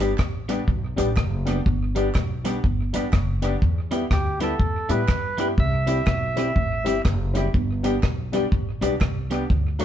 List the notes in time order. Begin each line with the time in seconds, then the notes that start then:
Already playing: G1
0.00 G3 B3 D4 G4, closed hi-hat
0.18 A1, muted clean electric guitar stroke, kick, cross-stick, clap
0.48 G3 B3 D4 G4, closed hi-hat
0.68 B1, kick
0.96 A1 G3 B3 D4 G4, closed hi-hat
1.16 F#1, kick, cross-stick, clap
1.45 G3 B3 D4 G4, closed hi-hat
1.66 G1, kick
1.95 G3 B3 D4 G4, closed hi-hat
2.15 B1, kick, cross-stick, clap
2.44 G3 B3 D4 G4, closed hi-hat
2.64 G1, kick
2.93 A1 G3 B3 D4 G4, closed hi-hat
3.13 F#1, kick, cross-stick, clap
3.42 G3 B3 D4 G4, closed hi-hat
3.62 E2, kick
3.91 G3 B3 E4 G4, closed hi-hat
4.10 D2 G4, muted clean electric guitar stroke, kick, cross-stick, clap
4.40 G3 B3 E4 G4 A4, closed hi-hat
4.60 E2, kick
4.89 A2 G3 B3 E4 G4 B4, closed hi-hat
5.08 G2, kick, cross-stick, clap
5.38 G3 B3 E4 G4 B4, closed hi-hat
5.58 C2 E5, kick
5.86 G3 C4 E4 G4, closed hi-hat
6.07 B1, muted clean electric guitar stroke, kick, cross-stick, clap
6.36 G3 C4 E4 G4, closed hi-hat
6.56 A1, kick
6.84 G1 G3 C4 E4 G4, closed hi-hat
7.05 F#1, kick, cross-stick, clap
7.34 G3 C4 E4 G4, closed hi-hat
7.54 G1, kick
7.83 G3 B3 D4 G4, closed hi-hat
8.03 B1, muted clean electric guitar stroke, kick, cross-stick, clap
8.32 G3 B3 D4 G4, closed hi-hat
8.52 A1, kick
8.81 B1 G3 B3 D4 G4, closed hi-hat
9.01 C2, kick, cross-stick, clap
9.30 G3 B3 D4 G4, closed hi-hat
9.50 D2, kick
9.79 F#3 A3 D4 F#4, closed hi-hat